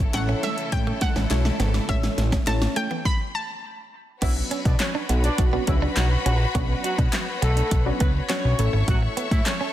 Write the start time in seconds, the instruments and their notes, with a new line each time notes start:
Already playing: string section C#3 E3 A3 E4 A4, synth pluck C#5
0.14 analog synth bass A1, synth arpeggio sound A3, synth stab C#4 E4 A4 C#5, synth pluck F#5, muted clean electric guitar stroke, snare, clap, closed hi-hat
0.29 synth arpeggio sound E3, clean electric guitar C#4
0.43 clean electric guitar A3, synth pluck E5, snare, closed hi-hat
0.58 closed hi-hat
0.72 analog synth bass A2, synth arpeggio sound E3, synth stab C#4 E4 A4 C#5, synth pluck G5, kick, snare, closed hi-hat
0.87 clean electric guitar A3, synth arpeggio sound C#4
1.01 synth arpeggio sound A3, synth pluck F#5, muted clean electric guitar stroke, kick, snare, closed hi-hat
1.16 analog synth bass A1, clean electric guitar C#4, snare
1.30 analog synth bass B1, synth stab C#4 E4 A4 C#5, synth arpeggio sound C#4, snare, clap, closed hi-hat
1.45 synth arpeggio sound A3, snare
1.60 analog synth bass G#1, synth arpeggio sound E3, clean electric guitar B3, snare, closed hi-hat
1.74 synth arpeggio sound C#4, snare
1.89 analog synth bass A1, clean electric guitar A3, synth stab C#4 E4 A4 C#5, synth pluck E5, kick, snare, closed hi-hat
2.03 synth arpeggio sound E3, snare
2.18 analog synth bass A1, muted clean electric guitar stroke, snare, closed hi-hat
2.32 synth arpeggio sound A3, clean electric guitar C#4, kick, snare, closed hi-hat
2.47 analog synth bass A1, synth stab C#4 E4 A4 C#5, synth pluck A5, muted clean electric guitar stroke, snare, clap, closed hi-hat
2.62 synth arpeggio sound C#4, snare
2.76 synth arpeggio sound A3, clean electric guitar A3, synth pluck G5, closed hi-hat
2.91 synth arpeggio sound E3, clean electric guitar B3
3.05 synth pluck B5, kick, snare
3.35 synth pluck A5
4.22 analog synth bass B1, horn section E3 E4, synth stab F#3 B3 C#4 D4 F#4, clean electric guitar B3, string section F#4 B4 C#5 B5, kick, closed hi-hat, crash
4.37 muted clean electric guitar stroke
4.51 clean electric guitar C#4, closed hi-hat
4.65 analog synth bass B2, horn section D4 D5, kick, closed hi-hat
4.80 horn section C#4 C#5, muted clean electric guitar stroke, snare, clap, closed hi-hat
4.95 clean electric guitar D4
5.09 analog synth bass B1, clean electric guitar B3, closed hi-hat
5.24 horn section D4 D5, closed hi-hat
5.38 analog synth bass B1, synth stab F#3 B3 C#4 D4 F#4, kick, closed hi-hat
5.53 synth stab F#3 B3 C#4 D4 F#4, clean electric guitar B3
5.67 analog synth bass C#2, horn section E3 E4, synth stab F#3 B3 C#4 D4 F#4, muted clean electric guitar stroke, kick, closed hi-hat
5.82 clean electric guitar D4
5.97 analog synth bass B1, horn section F#3 F#4, snare, clap, closed hi-hat
6.26 analog synth bass A#1, horn section F#3 F#4, clean electric guitar C#4, closed hi-hat
6.55 analog synth bass B1, synth stab F#3 B3 C#4 D4 F#4, clean electric guitar B3, kick, closed hi-hat
6.84 horn section F#3 F#4, muted clean electric guitar stroke, closed hi-hat
6.98 analog synth bass B2, clean electric guitar D4, kick, closed hi-hat
7.13 muted clean electric guitar stroke, snare, clap, closed hi-hat
7.42 analog synth bass B1, horn section A3 A4, clean electric guitar B3, closed hi-hat
7.57 clean electric guitar D4, closed hi-hat
7.71 analog synth bass B1, kick, closed hi-hat
7.86 synth stab F#3 B3 C#4 D4 F#4
8.00 analog synth bass C#2, clean electric guitar B3, horn section B3 B4, kick, closed hi-hat
8.29 synth stab F#3 B3 C#4 D4 F#4, clean electric guitar C#4, horn section C#4 C#5, snare, clap, closed hi-hat
8.44 analog synth bass B1, muted clean electric guitar stroke
8.59 analog synth bass A1, synth stab E3 A3 C#4 E4 A4, string section A4 E5 C#6, closed hi-hat
8.73 analog synth bass G#1, clean electric guitar A3
8.88 analog synth bass A1, horn section F#3 F#4, clean electric guitar A3, kick, closed hi-hat
9.02 muted clean electric guitar stroke
9.17 clean electric guitar B3, closed hi-hat
9.31 analog synth bass A2, horn section E3 E4, kick, closed hi-hat
9.46 horn section C#4 C#5, muted clean electric guitar stroke, snare, clap, closed hi-hat
9.61 clean electric guitar C#4